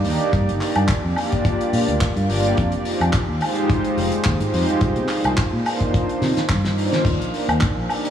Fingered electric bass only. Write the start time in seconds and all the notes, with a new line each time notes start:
0.05 D#2
0.33 G2
0.47 G1
0.76 G2
1.04 F2
1.73 A#2
1.88 D2
2.16 G2
2.29 G1
2.58 F2
2.72 F1
3.00 F2
3.28 D#2
3.97 F1
4.12 muted fingered electric bass stroke
4.26 D#2
4.40 G#2
4.53 F2
4.81 C2
4.96 C3
5.24 C2
5.53 A#2
6.21 C3
6.37 muted fingered electric bass stroke
6.49 G2
7.05 D#2
7.20 A#1
7.48 D#2
7.76 A#1